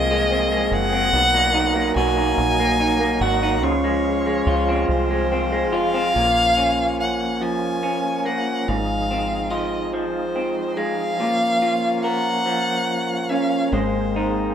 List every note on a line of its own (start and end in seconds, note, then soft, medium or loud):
0.00 0.68 C2 loud
0.00 1.10 F3 medium
0.00 1.10 G#3 medium
0.00 3.59 A#3 medium
0.00 0.31 C4 medium
0.00 0.72 F4 medium
0.00 1.10 G#4 medium
0.00 0.74 D#5 loud
0.11 0.51 G#3 medium
0.32 0.91 C4 medium
0.52 1.22 G#3 medium
0.71 1.11 F#1 loud
0.71 1.95 F#5 loud
0.93 1.22 C4 medium
1.13 1.92 B1 loud
1.13 2.38 B2 medium
1.13 3.60 F#3 medium
1.13 3.60 D#4 medium
1.34 1.74 A#3 medium
1.54 2.16 D#4 medium
1.76 2.59 A#3 medium
1.96 2.35 B1 medium
1.96 3.20 F#4 medium
1.96 3.23 G#5 loud
2.17 2.79 D#4 medium
2.38 3.17 A#1 medium
2.60 2.99 A#3 medium
2.80 3.42 D#4 medium
3.00 3.71 A#3 medium
3.21 3.63 G#1 medium
3.21 3.71 F#4 medium
3.21 3.65 F#5 loud
3.43 3.72 D#4 medium
3.62 4.42 C#2 loud
3.62 4.88 C#3 medium
3.62 6.13 F3 medium
3.62 6.13 G#3 medium
3.62 6.13 F4 medium
3.62 4.89 C#5 medium
3.84 4.25 G#3 medium
4.26 5.09 G#3 medium
4.46 4.86 C#2 medium
4.46 5.72 F4 medium
4.69 5.31 C4 medium
4.89 5.73 C2 medium
4.89 5.76 C5 medium
5.10 5.51 G#3 medium
5.32 5.93 C4 medium
5.52 6.24 G#3 medium
5.73 6.13 F1 medium
5.73 9.23 F4 medium
5.73 7.00 F5 loud
5.94 6.24 C4 medium
6.15 8.64 A#1 medium
6.15 8.68 A#2 medium
6.15 13.69 F3 soft
6.15 8.66 A#3 soft
6.15 8.66 C#4 medium
6.57 7.82 C#4 soft
7.01 7.44 F#5 medium
7.41 9.93 F3 medium
7.41 8.27 G#5 medium
7.83 8.76 C#4 soft
8.25 8.76 A#3 medium
8.25 8.69 F#5 medium
8.68 11.20 G#1 medium
8.68 11.20 G#2 medium
8.68 11.18 G#3 medium
8.68 11.18 D#4 medium
8.68 9.52 F5 loud
9.11 10.35 C4 medium
9.50 11.62 F4 medium
9.50 9.94 D#5 medium
9.93 12.45 F3 medium
9.93 10.79 C5 medium
10.36 11.28 C4 soft
10.77 11.28 G#3 medium
10.77 12.04 F5 loud
11.20 13.69 A#1 medium
11.20 13.73 A#2 medium
11.20 14.54 A#3 medium
11.20 13.71 C#4 medium
11.62 12.88 F4 medium
12.03 14.54 A#4 medium
12.03 13.31 F#5 loud
12.46 13.73 F3 medium
13.29 13.81 C#4 medium
13.29 13.74 F5 loud
13.72 14.54 G#1 medium
13.72 14.54 G#3 medium
13.72 14.54 C4 medium
13.72 14.54 C5 medium
14.16 14.54 D#4 medium